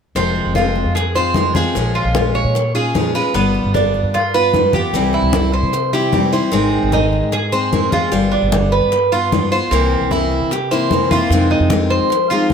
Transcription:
0.15 upright bass F1, steel-string acoustic guitar C3 F3 G#3 C4 F4, cuban tres C4, high bongo, high conga
0.36 high bongo, high conga
0.45 upright bass F1
0.55 steel-string acoustic guitar F3 G#3 C4 F4, cuban tres F4, high bongo, high conga
0.76 high bongo, high conga
0.85 upright bass F2
0.95 cuban tres G#4, muted steel-string acoustic guitar stroke, high bongo, high conga
1.15 steel-string acoustic guitar F3 G#3 C4 F4, cuban tres C5, high conga
1.34 steel-string acoustic guitar F3 G#3 C4 F4, high bongo, low bongo, high conga
1.55 steel-string acoustic guitar F3 G#3 C4 F4, cuban tres G#4, high bongo, high conga
1.75 upright bass A#1, steel-string acoustic guitar F3 G#3 C#4 F4, high bongo, high conga
1.95 cuban tres F4, high bongo, high conga
2.05 upright bass A#1
2.15 steel-string acoustic guitar F3 G#3 C#4 F4, high bongo, high conga
2.35 cuban tres C#5, high bongo, high conga
2.44 upright bass A#2
2.55 muted steel-string acoustic guitar stroke, high bongo, high conga
2.75 steel-string acoustic guitar G#3 C#4 F4, cuban tres G#4, high conga
2.95 steel-string acoustic guitar F3 G#3 C#4 F4, high bongo, low bongo, high conga
3.15 steel-string acoustic guitar G#3 C#4 F4, cuban tres B4, high bongo, high conga
3.34 upright bass G1, steel-string acoustic guitar G3 B3 F4, cuban tres B3, high bongo, high conga
3.55 high bongo, high conga
3.64 upright bass G1
3.74 steel-string acoustic guitar G3 B3 F4, cuban tres D4, high bongo, high conga
3.94 high bongo, high conga
4.03 upright bass G2
4.14 cuban tres F4, muted steel-string acoustic guitar stroke, high bongo, high conga
4.34 steel-string acoustic guitar B3 F4, cuban tres B4, high conga
4.54 steel-string acoustic guitar G3 B3 F4, high bongo, low bongo, high conga
4.73 steel-string acoustic guitar B3 F4, cuban tres G4, high bongo, high conga
4.93 upright bass C2, steel-string acoustic guitar C3 E3 G3 C4 E4, high bongo, high conga
5.13 cuban tres E4, high bongo, high conga
5.22 upright bass C2
5.33 steel-string acoustic guitar E3 G3 C4 E4, high bongo, high conga
5.52 cuban tres C5, high bongo, high conga
5.63 upright bass C3
5.73 muted steel-string acoustic guitar stroke, high bongo, high conga
5.93 steel-string acoustic guitar E3 G3 C4 E4, cuban tres G4, high conga
6.12 steel-string acoustic guitar E3 G3 C4 E4, high bongo, low bongo, high conga
6.32 steel-string acoustic guitar E3 G3 C4 E4, cuban tres C5, high bongo, high conga
6.52 upright bass G#1, steel-string acoustic guitar D#3 G#3 C4 G#4, cuban tres C4, high bongo, high conga
6.72 high bongo, high conga
6.83 upright bass G#1
6.92 steel-string acoustic guitar D#3 G#3 C4 G#4, cuban tres D#4, high bongo, high conga
7.13 high bongo, high conga
7.23 upright bass G#2
7.32 cuban tres G#4, muted steel-string acoustic guitar stroke, high bongo, high conga
7.52 steel-string acoustic guitar G#3 C4 G#4, cuban tres C5, high conga
7.73 steel-string acoustic guitar D#3 G#3 C4 G#4, high bongo, low bongo, high conga
7.92 steel-string acoustic guitar G#3 C4 G#4, cuban tres F4, high bongo, high conga
8.12 upright bass G1, steel-string acoustic guitar G3 B3 F4, high bongo, high conga
8.32 cuban tres D4, high bongo, high conga
8.42 upright bass G1
8.52 steel-string acoustic guitar G3 B3 F4, high bongo, high conga
8.72 cuban tres B4, high bongo, high conga
8.82 upright bass G2
8.92 muted steel-string acoustic guitar stroke, high bongo, high conga
9.12 steel-string acoustic guitar B3 F4, cuban tres F4, high conga
9.32 steel-string acoustic guitar G3 B3 F4, high bongo, low bongo, high conga
9.52 steel-string acoustic guitar B3 F4, cuban tres C5, high bongo, high conga
9.71 upright bass C2, steel-string acoustic guitar C3 E3 A#3 C4 E4, cuban tres C4, high bongo, high conga
9.91 high bongo, high conga
10.01 upright bass C2
10.11 steel-string acoustic guitar E3 A#3 C4 E4, cuban tres E4, high bongo, high conga
10.31 high bongo, high conga
10.41 upright bass C3
10.51 cuban tres G4, muted steel-string acoustic guitar stroke, high bongo, high conga
10.71 steel-string acoustic guitar E3 A#3 C4 E4, cuban tres C5, high conga
10.91 steel-string acoustic guitar E3 A#3 C4 E4, high bongo, low bongo, high conga
11.11 steel-string acoustic guitar E3 A#3 C4 E4, cuban tres F4, high bongo, high conga
11.30 upright bass F2, steel-string acoustic guitar C3 D#3 G#3 C4 F4, high bongo, high conga
11.50 cuban tres D#4, high bongo, high conga
11.60 upright bass F2
11.70 steel-string acoustic guitar D#3 G#3 C4 F4, high bongo, high conga
11.90 cuban tres C5, high bongo, high conga
12.01 upright bass F3
12.10 muted steel-string acoustic guitar stroke, high bongo, high conga
12.30 steel-string acoustic guitar D#3 G#3 C4 F4, cuban tres F4, high conga
12.50 upright bass D#2, high bongo, low bongo, high conga

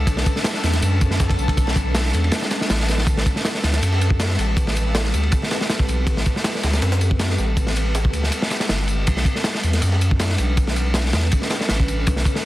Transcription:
Already playing: ambient pad C#4 D4 A4 B4, synth texture A4 A5
0.07 sub bass B1, kick, ride, tambourine
0.17 snare
0.26 kick, ride, tambourine
0.36 snare
0.44 snare, ride, tambourine
0.54 snare
0.63 sub bass E2, snare, ride, tambourine
0.74 snare, closed hi-hat
0.82 sub bass F#2, ride, tambourine
1.01 kick, ride, tambourine
1.11 snare
1.19 kick, snare, ride, tambourine
1.30 kick, ride
1.39 sub bass B1, tambourine
1.48 kick, ride
1.57 kick, ride, tambourine
1.67 snare
1.76 kick, ride, tambourine
1.95 snare, ride, tambourine
2.05 snare
2.14 sub bass E2, ride, tambourine
2.24 ride
2.32 snare, ride, tambourine
2.42 snare
2.51 snare, ride, tambourine
2.61 snare
2.70 sub bass A1, snare, ride, tambourine
2.80 snare
2.88 snare, ride, tambourine
2.98 snare
3.07 sub bass A1, ambient pad C4 G4 B4, kick, ride, tambourine
3.17 snare
3.26 kick, ride, tambourine
3.36 snare
3.45 snare, ride, tambourine
3.54 snare
3.64 sub bass D2, snare, ride, tambourine
3.73 snare, closed hi-hat
3.82 sub bass F#2, ride, tambourine
3.93 snare
4.01 ride, tambourine
4.10 kick
4.20 snare, ride, tambourine
4.30 snare
4.39 sub bass A1, snare, ride, tambourine
4.57 kick, ride, tambourine
4.67 snare
4.76 ride, tambourine
4.95 snare, ride, tambourine
5.04 snare
5.14 sub bass D2, ride, tambourine
5.23 ride
5.32 kick, ride, tambourine
5.42 snare
5.51 snare, ride, tambourine
5.61 snare
5.70 snare, ride, tambourine
5.79 kick
5.88 sub bass B1, ride, tambourine
6.07 sub bass A1, kick, ride, tambourine
6.17 snare
6.26 kick, ride, tambourine
6.36 snare
6.44 snare, ride, tambourine
6.55 snare
6.63 sub bass D2, snare, ride, tambourine
6.73 snare, tambourine
6.82 sub bass F#2, snare, ride, tambourine
6.92 snare, tambourine
7.01 ride, tambourine
7.11 kick
7.19 snare, ride, tambourine
7.29 snare
7.38 sub bass A1, snare, tambourine
7.57 kick, ride, tambourine
7.67 snare
7.76 ride, tambourine
7.95 snare, ride, tambourine
8.05 kick
8.13 sub bass D2, ride, tambourine
8.23 snare
8.32 ride, tambourine
8.42 snare
8.50 snare, ride, tambourine
8.60 snare, tambourine
8.69 sub bass G1, snare, ride
8.88 ride, tambourine
9.07 sub bass B1, ambient pad C#4 D4 A4 B4, kick, crash, ride, tambourine
9.17 snare
9.25 kick, ride, tambourine
9.36 snare
9.44 snare, ride, tambourine
9.55 snare
9.63 sub bass E2, ride, tambourine
9.73 snare, closed hi-hat
9.82 sub bass F#2, ride, tambourine
9.92 snare
10.01 ride, tambourine
10.11 kick
10.19 snare, ride, tambourine
10.29 snare
10.38 sub bass B1, snare, ride, tambourine
10.57 kick, ride, tambourine
10.67 snare
10.76 ride, tambourine
10.94 snare, ride, tambourine
11.06 snare
11.13 sub bass E2, snare, ride, tambourine
11.23 ride
11.31 kick, ride, tambourine
11.42 snare
11.50 snare, ride, tambourine
11.61 snare
11.69 sub bass A1, snare, ride, tambourine
11.80 kick
11.88 ride, tambourine
12.07 sub bass B1, kick, ride, tambourine
12.16 snare
12.25 kick, ride, tambourine
12.35 snare

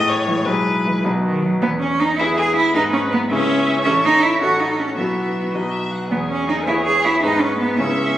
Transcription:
Already playing: grand piano A2 A3 E4 G#4, violin D#5
0.09 violin C#5
0.27 cello E3, viola G#3
0.46 grand piano B1 G#3 E4 G#4, violin B4
0.85 cello E3, viola G#3
1.04 grand piano B1 B3 D#4 F#4, cello B2
1.24 cello D#3
1.42 cello F#3, viola F#3
1.62 grand piano E2, cello B3, violin B3
1.80 cello C#4, violin C#4
2.00 cello D#4, violin D#4
2.18 grand piano B3 E4 G#4, cello E4, violin E4, viola G#4
2.37 cello G#4, violin G#4
2.56 violin E4, cello E4
2.74 grand piano G#2 B3 D#4 G#4, violin D#4, cello D#4, viola B4
2.93 cello C#4, violin C#4
3.11 violin B3, cello B3
3.28 grand piano C#2 C#4 E4 G#4, violin C#4, cello C#4, viola E5
3.84 grand piano A1 C#4 E4 A4, cello C#4, viola C#5, violin E5
4.05 cello D#4
4.23 cello E4
4.41 grand piano A1 C#4 F#4 A4, cello F#4, viola A4, violin C#5
4.60 cello D#4
4.79 cello C#4
4.97 grand piano B1 B3 E4 F#4, cello B3, viola F#4, violin E5
5.54 grand piano B1 B3 D#4 F#4, violin D#5
5.72 violin E5
5.92 violin F#5
6.11 grand piano E2, cello B3, violin G#4, viola G#4
6.29 cello C#4
6.48 cello D#4
6.67 grand piano B3 E4 G#4, cello E4, viola C#5
6.85 cello G#4
7.04 cello E4
7.23 grand piano G#2 B3 D#4 G#4, cello D#4, viola B4, violin B4
7.41 cello C#4
7.59 cello B3
7.78 grand piano C#2 C#4 E4 G#4, cello C#4, viola E5, violin E5

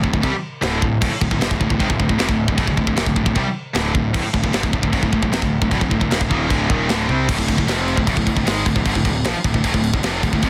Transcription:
0.03 picked electric bass D1, distorted electric guitar D2 A2, kick
0.14 picked electric bass D1, distorted electric guitar D2 A2, kick
0.23 picked electric bass C2, distorted electric guitar C3 G3, kick, china
0.34 muted distorted electric guitar stroke, muted picked electric bass stroke
0.62 picked electric bass D1, distorted electric guitar D2 A2 D3, snare, china
0.82 picked electric bass D1, distorted electric guitar D2 A2, kick
1.01 picked electric bass D1, distorted electric guitar D2 A2, kick, crash, china
1.12 muted distorted electric guitar stroke, muted picked electric bass stroke
1.21 picked electric bass D1, distorted electric guitar D2 A2, kick
1.31 picked electric bass D1, distorted electric guitar D2 A2, kick
1.41 picked electric bass G1, distorted electric guitar G2 D3, snare, china
1.51 picked electric bass D1, distorted electric guitar D2 A2, kick
1.61 picked electric bass D1, distorted electric guitar D2 A2, kick
1.70 picked electric bass D1, distorted electric guitar D2 A2, kick
1.79 picked electric bass G#1, distorted electric guitar G#2 D#3, kick, china
1.89 picked electric bass D1, distorted electric guitar D2 A2, kick
1.99 picked electric bass D1, distorted electric guitar D2 A2, kick
2.09 picked electric bass D1, distorted electric guitar D2 A2, kick
2.18 picked electric bass F1, distorted electric guitar F2 C3, snare, china
2.29 picked electric bass D1, distorted electric guitar D2 A2, kick
2.48 picked electric bass D1, distorted electric guitar D2 A2, kick
2.57 picked electric bass D1, distorted electric guitar D2 A2, kick, china
2.67 picked electric bass D1, distorted electric guitar D2 A2, kick
2.77 picked electric bass D1, distorted electric guitar D2 A2, kick
2.87 picked electric bass D1, distorted electric guitar D2 A2, kick
2.96 picked electric bass D#1, distorted electric guitar D#2 A#2, snare, china
3.06 picked electric bass D1, distorted electric guitar D2 A2, kick
3.16 picked electric bass D1, distorted electric guitar D2 A2, kick
3.25 picked electric bass D1, distorted electric guitar D2 A2, kick
3.35 picked electric bass C2, distorted electric guitar C3 G3, kick, china
3.45 muted distorted electric guitar stroke, muted picked electric bass stroke
3.74 picked electric bass D1, distorted electric guitar D2 A2 D3, snare, china
3.94 picked electric bass D1, distorted electric guitar D2 A2, kick
4.14 picked electric bass D1, distorted electric guitar D2 A2, kick, crash, china
4.24 muted distorted electric guitar stroke, muted picked electric bass stroke
4.34 picked electric bass D1, distorted electric guitar D2 A2, kick
4.44 picked electric bass D1, distorted electric guitar D2 A2, kick
4.53 picked electric bass G1, distorted electric guitar G2 D3, snare, china
4.63 picked electric bass D1, distorted electric guitar D2 A2, kick
4.73 picked electric bass D1, distorted electric guitar D2 A2, kick
4.83 picked electric bass D1, distorted electric guitar D2 A2, kick
4.92 picked electric bass G#1, distorted electric guitar G#2 D#3, kick, china
5.03 picked electric bass D1, distorted electric guitar D2 A2, kick
5.13 picked electric bass D1, distorted electric guitar D2 A2, kick
5.23 picked electric bass D1, distorted electric guitar D2 A2, kick
5.32 picked electric bass F1, distorted electric guitar F2 C3, snare, china
5.42 picked electric bass D1, distorted electric guitar D2 A2, kick
5.62 picked electric bass D1, distorted electric guitar D2 A2, kick
5.71 picked electric bass D1, distorted electric guitar D2 A2, kick, china
5.81 picked electric bass D1, distorted electric guitar D2 A2, kick
5.91 picked electric bass D1, distorted electric guitar D2 A2, kick
6.01 picked electric bass D1, distorted electric guitar D2 A2, kick
6.11 picked electric bass D#1, distorted electric guitar D#2 A#2, snare, china
6.21 picked electric bass D1, distorted electric guitar D2 A2, kick
6.30 picked electric bass D#1, distorted electric guitar D#2 A#2 D#3, kick
6.50 picked electric bass D1, distorted electric guitar D2 A2 D3, kick, china
6.70 picked electric bass D#1, distorted electric guitar D#2 A#2 D#3, kick
6.89 picked electric bass D1, distorted electric guitar D2 A2 D3, snare, china
7.09 picked electric bass C2, distorted electric guitar C3 G3 C4, high tom
7.28 picked electric bass D1, distorted electric guitar D2 A2, kick, crash
7.38 picked electric bass D1, distorted electric guitar D2 A2, kick
7.48 picked electric bass D1, distorted electric guitar D2 A2, kick, crash
7.58 picked electric bass D1, distorted electric guitar D2 A2, kick
7.67 picked electric bass F1, distorted electric guitar F2 C3 F3, snare, crash
7.88 crash
7.97 picked electric bass D1, distorted electric guitar D2 A2, kick
8.07 picked electric bass D1, distorted electric guitar D2 A2, kick, crash
8.17 picked electric bass D1, distorted electric guitar D2 A2, kick
8.27 picked electric bass D1, distorted electric guitar D2 A2, kick, crash
8.37 picked electric bass D1, distorted electric guitar D2 A2, kick
8.46 picked electric bass G#1, distorted electric guitar G#2 D#3 G#3, snare, crash
8.66 picked electric bass D1, distorted electric guitar D2 A2, kick, crash
8.76 picked electric bass D1, distorted electric guitar D2 A2, kick
8.85 picked electric bass G1, distorted electric guitar G2 D3, kick, crash
8.95 picked electric bass D1, distorted electric guitar D2 A2, kick
9.05 picked electric bass D1, distorted electric guitar D2 A2, kick, crash
9.24 picked electric bass A#1, distorted electric guitar A#2 F3, snare, crash
9.34 muted picked electric bass stroke, muted distorted electric guitar stroke
9.44 picked electric bass D1, distorted electric guitar D2 A2, kick, crash
9.54 picked electric bass D1, distorted electric guitar D2 A2, kick
9.64 picked electric bass D1, distorted electric guitar D2 A2, kick, crash
9.74 picked electric bass D1, distorted electric guitar D2 A2, kick
9.84 crash
9.94 picked electric bass D1, distorted electric guitar D2 A2, kick
10.03 picked electric bass F1, distorted electric guitar F2 C3 F3, snare, crash
10.23 picked electric bass D1, distorted electric guitar D2 A2, kick, crash
10.33 picked electric bass D1, distorted electric guitar D2 A2, kick
10.42 picked electric bass F1, distorted electric guitar F2 C3, kick, crash

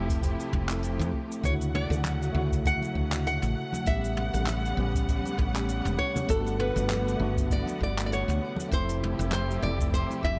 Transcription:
Already playing: fretless electric bass F1, string section C3 F3 A3 E4 G4, tine electric piano A3 C4 E4 A4, nylon-string guitar A4
0.09 kick, closed hi-hat, cabasa
0.22 kick, closed hi-hat, cabasa
0.39 closed hi-hat, cabasa
0.53 fretless electric bass F1, kick, mid tom
0.68 tine electric piano A3 C4 E4, clap, closed hi-hat, cabasa
0.73 tine electric piano A4
0.82 closed hi-hat, cabasa
0.99 fretless electric bass F2, closed hi-hat, mid tom, cabasa
1.13 kick
1.31 closed hi-hat, cabasa
1.41 fretless electric bass D2, tine electric piano C#3 A3 E4, string section C#3 F#3 F#5, nylon-string guitar C#5, kick, closed hi-hat, cabasa
1.47 tine electric piano F#4
1.61 closed hi-hat, cabasa
1.75 nylon-string guitar D5, mid tom
1.90 fretless electric bass D2, closed hi-hat, high bongo, cabasa
2.03 clap, closed hi-hat, high conga, cabasa
2.22 closed hi-hat, cabasa
2.32 fretless electric bass D2, tine electric piano C#3 A3 E4
2.38 tine electric piano F#4, nylon-string guitar C#5
2.52 kick, closed hi-hat, cabasa
2.65 nylon-string guitar F#5, kick, closed hi-hat, cabasa
2.81 closed hi-hat, high conga, cabasa
2.95 fretless electric bass D2, kick
3.12 clap, closed hi-hat, cabasa
3.26 nylon-string guitar F#5, closed hi-hat, cabasa
3.42 fretless electric bass A1, closed hi-hat, mid tom, cabasa
3.73 closed hi-hat, high conga, cabasa
3.85 fretless electric bass A1, string section C#3 G3 B3, tine electric piano G3 B3 C#4, nylon-string guitar E5, kick, closed hi-hat, cabasa
3.90 tine electric piano G4
4.04 closed hi-hat, cabasa
4.17 mid tom
4.34 fretless electric bass A1, closed hi-hat, high bongo, cabasa
4.46 clap, closed hi-hat, high conga, cabasa
4.65 closed hi-hat, cabasa
4.75 fretless electric bass A1, tine electric piano G3 B3 C#4
4.80 tine electric piano G4
4.94 kick, closed hi-hat, cabasa
5.08 kick, closed hi-hat, cabasa
5.24 closed hi-hat, high conga, cabasa
5.38 fretless electric bass A1, kick, mid tom, high bongo
5.53 tine electric piano G3 B3 C#4, clap, closed hi-hat, cabasa
5.58 tine electric piano G4
5.68 closed hi-hat, cabasa
5.85 fretless electric bass E1, closed hi-hat, mid tom, cabasa
5.99 nylon-string guitar C#5, kick
6.16 closed hi-hat, high conga, low conga, cabasa
6.27 fretless electric bass G1, string section D3 B3, tine electric piano A3 B3 D4, nylon-string guitar A4, kick, closed hi-hat, cabasa
6.32 tine electric piano F#4
6.46 closed hi-hat, cabasa
6.59 nylon-string guitar B4, mid tom
6.76 fretless electric bass G1, closed hi-hat, high bongo, cabasa
6.89 clap, closed hi-hat, high conga, cabasa
7.08 closed hi-hat, cabasa
7.17 fretless electric bass G1, tine electric piano A3 B3 D4
7.22 tine electric piano F#4
7.37 kick, closed hi-hat, cabasa
7.50 nylon-string guitar D5, kick, closed hi-hat, cabasa
7.66 closed hi-hat, high conga, cabasa
7.80 fretless electric bass G1, nylon-string guitar D5, kick
7.98 clap, closed hi-hat, cabasa
8.06 nylon-string guitar D5
8.12 nylon-string guitar C#5, closed hi-hat, cabasa
8.28 fretless electric bass D2, closed hi-hat, mid tom, cabasa
8.56 closed hi-hat, high conga, cabasa
8.69 fretless electric bass F1, string section C3 F3 E4 G4, tine electric piano A3 C4 E4, kick, closed hi-hat
8.73 tine electric piano A4, nylon-string guitar C5, cabasa
8.89 closed hi-hat, cabasa
9.03 mid tom
9.19 fretless electric bass F1, closed hi-hat, high bongo, cabasa
9.31 nylon-string guitar C5, clap, closed hi-hat, high conga, cabasa
9.50 closed hi-hat, cabasa
9.60 fretless electric bass F1, tine electric piano A3 C4 E4, nylon-string guitar D5
9.65 tine electric piano A4
9.79 kick, closed hi-hat, cabasa
9.93 nylon-string guitar C5, kick, closed hi-hat, cabasa
10.09 closed hi-hat, high conga, cabasa
10.23 fretless electric bass F1, nylon-string guitar E5, kick, mid tom, high bongo

